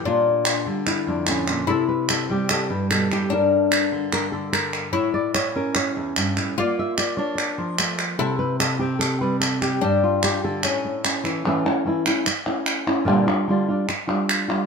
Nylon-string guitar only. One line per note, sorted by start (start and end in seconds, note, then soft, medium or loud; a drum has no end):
0.05 0.66 A#2 medium
0.05 0.86 F4 medium
0.66 1.68 D3 medium
0.66 2.28 G3 soft
0.87 1.48 E4 medium
1.07 1.66 F2 medium
1.07 1.28 D4 medium
1.28 1.48 A2 medium
1.28 1.69 C#4 medium
1.49 1.67 A#2 medium
1.68 2.70 C3 medium
1.68 1.88 A4 medium
1.89 2.09 B4 medium
2.10 2.30 A4 medium
2.30 3.29 G3 medium
2.30 2.50 G4 medium
2.51 2.70 A4 medium
2.70 3.29 G2 medium
2.70 2.90 B4 medium
2.91 3.11 B2 medium
2.91 3.11 A4 medium
3.11 3.31 A2 medium
3.11 3.32 G4 loud
3.32 4.92 G2 medium
3.32 4.12 A#4 medium
3.92 4.32 D3 medium
4.13 4.32 A#4 loud
4.32 4.92 D3 medium
4.32 4.52 A4 medium
4.53 4.92 A#4 medium
4.93 5.96 A2 medium
4.93 5.13 C#5 medium
5.14 5.34 D5 loud
5.35 5.74 C#5 loud
5.56 6.54 C#4 medium
5.56 5.76 A#4 medium
5.75 5.96 C#5 medium
5.96 6.16 E2 medium
5.96 6.55 E5 soft
6.17 6.37 G2 medium
6.37 6.57 A2 medium
6.58 8.18 A#3 medium
6.58 6.78 D5 medium
6.79 6.98 E5 loud
6.98 7.34 D5 loud
7.17 7.79 D4 medium
7.17 7.58 C#5 medium
7.35 7.98 D5 medium
7.58 8.17 F3 medium
7.58 8.17 A#4 soft
7.79 7.99 A3 medium
8.19 9.80 C3 medium
8.19 8.80 C4 medium
8.19 9.80 E4 medium
8.19 8.38 A4 medium
8.39 8.59 B4 loud
8.60 8.79 A4 loud
8.79 9.80 C4 medium
8.79 8.99 G4 medium
8.99 9.20 A4 loud
9.21 9.80 G3 medium
9.21 9.40 B4 loud
9.40 9.61 A4 medium
9.62 9.81 G4 medium
9.82 10.62 G2 medium
9.82 10.23 G4 medium
10.04 10.64 F4 medium
10.24 10.44 G4 medium
10.44 10.64 D3 medium
10.44 11.24 A4 medium
10.64 11.44 A2 medium
10.64 11.04 C#4 soft
10.85 11.43 A3 soft
11.05 11.43 C#4 soft
11.24 11.42 E3 medium
11.24 11.46 E4 soft
11.45 11.64 A2 medium
11.45 11.65 E3 medium
11.45 11.65 A3 medium
11.45 11.65 C#4 medium
11.45 11.64 E4 medium
11.65 11.85 A3 soft
11.65 11.85 C#4 medium
11.65 11.85 E4 soft
11.85 12.05 E3 medium
11.85 12.05 A3 medium
11.85 12.05 C#4 medium
11.85 12.05 E4 medium
12.06 12.25 A3 soft
12.06 12.25 C#4 soft
12.06 12.26 E4 medium
12.26 muted nylon-string guitar stroke medium
12.46 12.88 A3 soft
12.46 12.87 C#4 soft
12.46 12.86 E4 soft
12.87 13.06 A3 soft
12.87 13.07 C#4 medium
12.87 13.07 E4 medium
13.05 13.26 A#2 medium
13.05 13.26 D3 medium
13.05 13.26 G3 medium
13.05 13.27 D4 medium
13.05 13.25 F4 medium
13.27 13.47 G3 soft
13.27 13.47 D4 medium
13.27 13.47 F4 medium
13.48 13.68 D3 medium
13.48 13.68 G3 medium
13.48 13.68 D4 medium
13.48 13.67 F4 medium
13.69 13.88 G3 soft
13.69 13.88 D4 medium
13.69 13.88 F4 medium
13.89 muted nylon-string guitar stroke medium
14.07 14.49 G3 soft
14.07 14.49 D4 soft
14.07 14.47 F4 medium
14.48 14.66 G3 soft
14.48 14.66 D4 medium
14.48 14.66 F4 medium